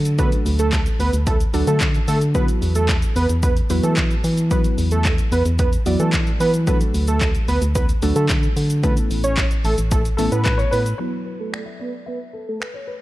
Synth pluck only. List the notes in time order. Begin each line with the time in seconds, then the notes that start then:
0.19 F#3 A3 D4 F#4 A4
1.53 F#3 A3 D4 F#4 A4
2.34 F#3 B3 E4 F#4 B4
3.70 F#3 B3 E4 F#4 B4
4.51 F#3 B3 E4 F#4 B4
5.86 F#3 B3 E4 F#4 D5
6.67 F#3 A3 D4 F#4 A4
8.02 F#3 A3 D4 F#4 A4
8.83 A3 B3 C#4 E4 A4
10.18 A3 B3 C#4 E4 A4
10.99 F#3 B3 E4 F#4